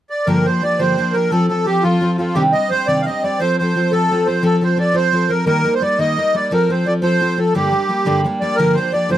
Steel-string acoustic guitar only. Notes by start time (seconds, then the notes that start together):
0.27 G2 D3 F3 A#3 D4 G4
0.46 F3 A#3 D4 G4
0.62 F3 A#3 D4 G4
0.79 G2 D3 F3 A#3 D4 G4
0.98 F3 A#3 D4 G4
1.14 F3 A#3 D4 G4
1.31 F3 C4 F4 A4
1.49 F3 C4 F4 A4
1.66 F3 C4 F4 A4
1.84 F3 C4 F4 A4
2.01 F3 C4 F4 A4
2.18 F3 C4 F4 A4
2.35 C3 D#3 G3 C4 D4 G4
2.53 G3 C4 D4 G4
2.70 G3 C4 D4 G4
2.88 C3 D#3 G3 C4 D4 G4
3.07 G3 C4 D4 G4
3.24 G3 C4 D4 G4
3.40 F3 C4 F4 A4
3.60 F3 C4 F4 A4
3.75 F3 C4 F4 A4
3.92 F3 C4 F4 A4
4.11 F3 C4 F4 A4
4.27 F3 C4 F4 A4
4.42 F3 C4 F4 A4
4.61 F3 C4 F4 A4
4.77 F3 C4 F4 A4
4.93 F3 C4 F4 A4
5.12 F3 C4 F4 A4
5.29 F3 C4 F4 A4
5.46 D#3 G3 A#3 D#4 A#4
5.64 G3 A#3 D#4 A#4
5.81 G3 A#3 D#4 A#4
5.99 D#3 G3 A#3 D#4 A#4
6.17 G3 A#3 D#4 A#4
6.34 G3 A#3 D#4 A#4
6.51 F3 C4 F4 A4
6.69 F3 C4 F4 A4
6.86 F3 C4 F4 A4
7.02 F3 C4 F4 A4
7.20 F3 C4 F4 A4
7.38 F3 C4 F4 A4
7.54 G2 D3 G3 A#3 D4 G4
7.71 G3 A#3 D4 G4
7.89 G3 A#3 D4 G4
8.05 G2 D3 G3 A#3 D4 G4
8.24 G3 A#3 D4 G4
8.42 G3 A#3 D4 G4
8.58 G2 D3 F3 A#3 D4 G4
8.77 F3 A#3 D4 G4
8.92 F3 A#3 D4 G4
9.09 G2 D3 F3 A#3 D4 G4